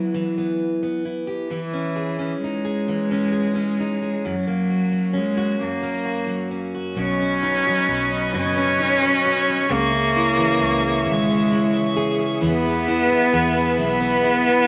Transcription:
Already playing: steel-string acoustic guitar E3 B3 E4, cello F#3
0.14 steel-string acoustic guitar E3
0.38 steel-string acoustic guitar B3
0.83 steel-string acoustic guitar B3
1.05 steel-string acoustic guitar E4
1.27 steel-string acoustic guitar G4
1.50 steel-string acoustic guitar E3, cello E3
1.73 steel-string acoustic guitar C#4
1.96 steel-string acoustic guitar G#4
2.19 steel-string acoustic guitar C#4
2.42 cello G#3, steel-string acoustic guitar D#4
2.65 steel-string acoustic guitar G#4
2.88 steel-string acoustic guitar E3
3.11 steel-string acoustic guitar C#4
3.32 steel-string acoustic guitar G#4
3.55 steel-string acoustic guitar C#4
3.80 steel-string acoustic guitar D#4
4.02 steel-string acoustic guitar G#4
4.24 steel-string acoustic guitar F#2, cello F#3
4.47 steel-string acoustic guitar A#3
4.70 steel-string acoustic guitar F#4
4.92 steel-string acoustic guitar F#3
5.13 cello G#3, steel-string acoustic guitar C#4
5.37 steel-string acoustic guitar F#4
5.61 steel-string acoustic guitar F#2, cello A#3
5.83 steel-string acoustic guitar A#3
6.05 steel-string acoustic guitar F#4
6.27 steel-string acoustic guitar F#3
6.51 steel-string acoustic guitar C#4
6.75 steel-string acoustic guitar F#4
6.96 fingered electric bass B1, steel-string acoustic guitar B2, cello C#4, string section B4 D#5 C#6
7.21 steel-string acoustic guitar C#4
7.43 steel-string acoustic guitar D#4
7.67 steel-string acoustic guitar F#3
7.89 fingered electric bass B1, steel-string acoustic guitar F#4
8.11 steel-string acoustic guitar C#4
8.34 fingered electric bass F#1, steel-string acoustic guitar B2, cello C#4
8.57 steel-string acoustic guitar C#4
8.80 steel-string acoustic guitar D#4
9.03 steel-string acoustic guitar F#3
9.26 steel-string acoustic guitar F#4
9.49 steel-string acoustic guitar C#4
9.69 fingered electric bass C#2, steel-string acoustic guitar C#3, cello A#3, string section G#4 E5
9.93 steel-string acoustic guitar C#4
10.16 steel-string acoustic guitar E4
10.37 steel-string acoustic guitar E3
10.60 fingered electric bass C#2, steel-string acoustic guitar G#4
10.83 steel-string acoustic guitar C#4
11.05 fingered electric bass G#1, steel-string acoustic guitar C#3
11.10 cello G#3
11.29 steel-string acoustic guitar C#4
11.52 steel-string acoustic guitar E4
11.74 steel-string acoustic guitar E3
11.97 steel-string acoustic guitar G#4
12.19 steel-string acoustic guitar C#4
12.41 fingered electric bass E2, steel-string acoustic guitar E3, string section E5 B5
12.47 cello B3
12.66 steel-string acoustic guitar B3
12.88 steel-string acoustic guitar E4
13.10 steel-string acoustic guitar B3
13.33 fingered electric bass E2, steel-string acoustic guitar G#4
13.56 steel-string acoustic guitar B3
13.78 fingered electric bass B1, steel-string acoustic guitar E3
13.84 cello B3
14.01 steel-string acoustic guitar B3
14.24 steel-string acoustic guitar E4
14.48 steel-string acoustic guitar B3

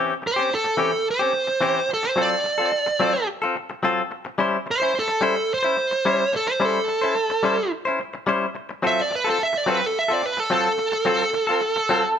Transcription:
Already playing: clean electric guitar E3 C4 C#4 G4
0.22 muted clean electric guitar stroke
0.27 lead electric guitar C5
0.36 clean electric guitar C4 C#4 G4
0.50 muted clean electric guitar stroke
0.55 lead electric guitar A4
0.64 muted clean electric guitar stroke
0.77 clean electric guitar E3 C4 C#4 G4
0.92 muted clean electric guitar stroke
1.11 lead electric guitar C5
1.19 clean electric guitar C4 C#4 G4
1.33 muted clean electric guitar stroke
1.47 muted clean electric guitar stroke
1.61 clean electric guitar E3 C4 C#4 G4
1.89 muted clean electric guitar stroke
1.94 lead electric guitar A4
2.03 muted clean electric guitar stroke
2.09 lead electric guitar C5
2.16 clean electric guitar F#3 C4 F4 A4
2.22 lead electric guitar D5
2.44 muted clean electric guitar stroke
2.58 clean electric guitar C4 F4 A4
2.72 muted clean electric guitar stroke
2.86 muted clean electric guitar stroke
3.00 clean electric guitar F#3 C4 F4 A4
3.15 muted clean electric guitar stroke
3.42 clean electric guitar C4 F4 A4
3.56 muted clean electric guitar stroke
3.70 muted clean electric guitar stroke
3.83 clean electric guitar F#3 C4 F4 A4
4.11 muted clean electric guitar stroke
4.25 muted clean electric guitar stroke
4.38 clean electric guitar G3 C#4 E4 C5
4.66 muted clean electric guitar stroke
4.71 lead electric guitar C5
4.80 clean electric guitar C#4 E4 C5
4.94 muted clean electric guitar stroke
4.99 lead electric guitar A4
5.08 muted clean electric guitar stroke
5.21 clean electric guitar G3 C#4 E4 C5
5.36 muted clean electric guitar stroke
5.54 lead electric guitar C5
5.63 clean electric guitar C#4 E4 C5
5.77 muted clean electric guitar stroke
5.91 muted clean electric guitar stroke
6.05 clean electric guitar G3 C#4 E4 C5
6.33 lead electric guitar A4, muted clean electric guitar stroke
6.47 muted clean electric guitar stroke
6.51 lead electric guitar C5
6.60 clean electric guitar G3 C#4 E4 C5
6.65 lead electric guitar A4
6.88 muted clean electric guitar stroke
7.02 clean electric guitar C#4 E4 C5
7.15 muted clean electric guitar stroke
7.30 muted clean electric guitar stroke
7.43 clean electric guitar G3 C#4 E4 C5
7.58 muted clean electric guitar stroke
7.85 clean electric guitar C#4 E4 C5
8.00 muted clean electric guitar stroke
8.14 muted clean electric guitar stroke
8.27 clean electric guitar G3 C#4 E4 C5
8.55 muted clean electric guitar stroke
8.69 muted clean electric guitar stroke
8.82 clean electric guitar F#3 C4 F4 A4
8.87 lead electric guitar E5
9.01 lead electric guitar D5
9.11 muted clean electric guitar stroke
9.15 lead electric guitar B4
9.24 clean electric guitar C4 F4 A4
9.30 lead electric guitar A4
9.39 muted clean electric guitar stroke
9.43 lead electric guitar E5
9.53 muted clean electric guitar stroke
9.58 lead electric guitar D5
9.66 clean electric guitar F#3 C4 F4 A4
9.70 lead electric guitar B4
9.81 muted clean electric guitar stroke
9.86 lead electric guitar A4
9.99 lead electric guitar E5
10.08 clean electric guitar C4 F4 A4
10.13 lead electric guitar D5
10.22 lead electric guitar B4, muted clean electric guitar stroke
10.37 lead electric guitar A4, muted clean electric guitar stroke
10.50 clean electric guitar F#3 C4 F4 A4, lead electric guitar A4
10.78 muted clean electric guitar stroke
10.92 muted clean electric guitar stroke
11.05 clean electric guitar F#3 C4 F4 A4
11.33 muted clean electric guitar stroke
11.47 clean electric guitar C4 F4 A4
11.61 muted clean electric guitar stroke
11.76 muted clean electric guitar stroke
11.89 clean electric guitar F#3 C4 F4 A4
12.04 muted clean electric guitar stroke

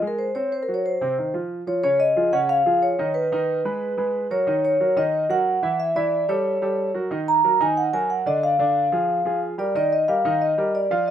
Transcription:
0.02 grand piano G#3 G#4
0.07 vibraphone A#4
0.19 vibraphone C5
0.35 grand piano C4 C5, vibraphone C#5
0.52 vibraphone C5
0.63 vibraphone A#4
0.68 grand piano F#3 F#4
0.74 vibraphone C#5
0.86 vibraphone C5
1.01 grand piano C3 C4
1.18 grand piano D#3 D#4
1.34 grand piano F3 F4
1.67 grand piano F3 F4, vibraphone C#5
1.83 grand piano C#3 C#4 C#5, vibraphone C#5
2.00 vibraphone D#5
2.16 grand piano F3 F4 G#4
2.32 grand piano C#3 C#4 C#5, vibraphone F#5
2.49 vibraphone F5
2.66 grand piano F3 F4 G#4
2.83 vibraphone C#5
2.99 grand piano D#3 D#4 D#5
3.14 vibraphone B4
3.32 grand piano D#3 D#4 D#5
3.65 grand piano G#3 G#4 B4
3.97 grand piano G#3 G#4 B4
4.31 grand piano F#3 F#4 A#4, vibraphone C#5
4.47 grand piano D#3 D#4 D#5
4.65 vibraphone C#5
4.80 grand piano F#3 F#4 A#4
4.96 grand piano D#3 D#4 D#5, vibraphone D#5
5.29 grand piano F#3 F#4 A#4, vibraphone F#5
5.62 grand piano E3 E4 E5
5.80 vibraphone E5
5.96 grand piano E3 E4 E5, vibraphone D5
6.28 grand piano G3 G4 A4, vibraphone C#5
6.62 grand piano G3 G4 A4
6.94 grand piano F#3 F#4 A#4
7.11 grand piano D#3 D#4 D#5
7.28 vibraphone A#5
7.44 grand piano F#3 F#4 A#4
7.60 grand piano D#3 D#4 D#5, vibraphone G#5
7.77 vibraphone F#5
7.93 grand piano F#3 F#4 A#4, vibraphone G#5
8.10 vibraphone F#5
8.26 grand piano D3 D4 D5, vibraphone D#5
8.43 vibraphone F5
8.59 grand piano D3 D4 D5
8.92 grand piano F3 F4 G#4
9.25 grand piano F3 F4 G#4
9.58 grand piano G3 G4 A#4, vibraphone D5
9.75 grand piano D#3 D#4 D#5, vibraphone D5
9.93 vibraphone D#5
10.08 grand piano G3 G4 A#4, vibraphone F5
10.25 grand piano D#3 D#4 D#5
10.42 vibraphone D#5
10.58 grand piano G3 G4 A#4
10.75 vibraphone D5
10.91 grand piano F3 F4 F5

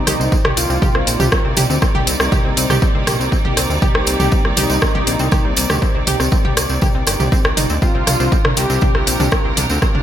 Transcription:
Already playing: string section C3 G3 A#3 D#4 D5, analog synth lead D#4
0.07 analog synth bass C2, synth pluck G4 G5, cross-stick, mid tom, open hi-hat, tambourine
0.20 analog synth bass C2, synth pluck C4 C5, tambourine
0.32 synth pluck C4 C5, kick, tambourine
0.45 analog synth bass C2, synth pluck G4 G5, cross-stick, mid tom
0.57 analog synth bass C2, synth pluck C4 C5, analog synth lead F4, open hi-hat, tambourine
0.70 analog synth bass C2, synth pluck C4 C5, tambourine
0.82 synth pluck G4 G5, kick, mid tom, tambourine
0.95 analog synth bass C2, synth pluck C4 C5, cross-stick
1.07 analog synth bass A#1, synth pluck C4 C5, open hi-hat, tambourine
1.20 analog synth bass C2, synth pluck G4 G5, mid tom, tambourine
1.32 synth pluck C4 C5, kick, cross-stick, tambourine
1.45 analog synth bass C2, synth pluck C4 C5
1.57 analog synth bass C2, synth pluck G4 G5, mid tom, open hi-hat, tambourine
1.70 analog synth bass D2, synth pluck C4 C5, tambourine
1.82 synth pluck C4 C5, kick, cross-stick, tambourine
1.95 analog synth bass C2, synth pluck G4 G5, mid tom
2.07 analog synth bass C2, synth pluck C4 C5, open hi-hat, tambourine
2.20 analog synth bass C2, synth pluck C4 C5, cross-stick, tambourine
2.32 synth pluck G4 G5, kick, mid tom, tambourine
2.45 analog synth bass C2, synth pluck C4 C5
2.57 analog synth bass C2, synth pluck C4 C5, open hi-hat, tambourine
2.70 analog synth bass C2, synth pluck G4 G5, cross-stick, mid tom, tambourine
2.82 synth pluck C4 C5, kick, tambourine
2.95 analog synth bass C2, synth pluck C4 C5
3.07 analog synth bass A#1, synth pluck G4 G5, cross-stick, mid tom, open hi-hat, tambourine
3.20 analog synth bass C2, synth pluck C4 C5, tambourine
3.32 synth pluck C4 C5, kick, tambourine
3.45 analog synth bass C2, synth pluck G4 G5, mid tom
3.57 analog synth bass C2, synth pluck C4 C5, cross-stick, open hi-hat, tambourine
3.70 analog synth bass D2, synth pluck C4 C5, tambourine
3.82 analog synth lead G4, synth pluck G4 G5, kick, mid tom, tambourine
3.95 analog synth bass C2, synth pluck C4 C5, cross-stick
4.07 analog synth bass C2, synth pluck C4 C5, open hi-hat, tambourine
4.20 analog synth bass C2, synth pluck G4 G5, mid tom, tambourine
4.32 synth pluck C4 C5, kick, tambourine
4.45 analog synth bass C2, synth pluck C4 C5, cross-stick
4.57 analog synth bass C2, analog synth lead D#4, synth pluck G4 G5, mid tom, open hi-hat, tambourine
4.70 analog synth bass C2, synth pluck C4 C5, tambourine
4.82 synth pluck C4 C5, kick, cross-stick, tambourine
4.95 analog synth bass C2, synth pluck G4 G5, mid tom
5.07 analog synth bass A#1, synth pluck C4 C5, open hi-hat, tambourine
5.19 analog synth bass C2, synth pluck C4 C5, tambourine
5.31 synth pluck G4 G5, kick, cross-stick, mid tom, tambourine
5.45 analog synth bass C2, synth pluck C4 C5
5.56 analog synth bass C2, synth pluck C4 C5, open hi-hat, tambourine
5.70 analog synth bass D2, synth pluck G4 G5, cross-stick, mid tom, tambourine
5.82 synth pluck C4 C5, kick, tambourine
5.95 analog synth bass C2, synth pluck C4 C5
6.07 analog synth bass C2, synth pluck G4 G5, mid tom, open hi-hat, tambourine
6.20 analog synth bass C2, synth pluck C4 C5, cross-stick, tambourine
6.32 synth pluck C4 C5, kick, tambourine
6.45 analog synth bass C2, synth pluck G4 G5, mid tom
6.57 analog synth bass C2, synth pluck C4 C5, cross-stick, open hi-hat, tambourine
6.69 analog synth bass C2, synth pluck C4 C5, tambourine
6.81 synth pluck G4 G5, kick, mid tom, tambourine
6.95 analog synth bass C2, synth pluck C4 C5
7.07 analog synth bass G1, synth pluck G4 G5, cross-stick, open hi-hat, tambourine
7.20 analog synth bass C2, synth pluck G4 G5, mid tom, tambourine
7.32 synth pluck C4 C5, kick, tambourine
7.45 analog synth bass C2, synth pluck G4 G5, cross-stick
7.57 analog synth bass G1, synth pluck D#4 D#5, mid tom, open hi-hat, tambourine
7.70 analog synth bass D2, synth pluck C4 C5, tambourine
7.82 string section C3 C4 D4 F4 A#4, synth pluck C4 C5, analog synth lead F4, kick, tambourine
7.95 analog synth bass C2, synth pluck C4 C5
8.07 analog synth bass C2, synth pluck D4 D5, cross-stick, mid tom, open hi-hat, tambourine
8.20 analog synth bass C2, synth pluck C4 C5, tambourine
8.32 synth pluck C4 C5, kick, tambourine
8.45 analog synth bass C2, synth pluck D4 D5, cross-stick, mid tom
8.57 analog synth bass C2, synth pluck C4 C5, analog synth lead G4, open hi-hat, tambourine
8.70 analog synth bass C2, synth pluck C4 C5, tambourine
8.81 synth pluck D4 D5, kick, mid tom, tambourine
8.95 analog synth bass C2, synth pluck C4 C5, cross-stick
9.07 analog synth bass A#1, synth pluck C4 C5, open hi-hat, tambourine
9.20 analog synth bass C2, synth pluck D4 D5, mid tom, tambourine
9.31 synth pluck C4 C5, kick, cross-stick, tambourine
9.45 analog synth bass C2, synth pluck C4 C5
9.57 analog synth bass C2, synth pluck D4 D5, mid tom, open hi-hat, tambourine
9.69 analog synth bass D2, synth pluck C4 C5, tambourine
9.82 synth pluck C4 C5, kick, cross-stick, tambourine
9.95 analog synth bass C2, synth pluck D4 D5, mid tom

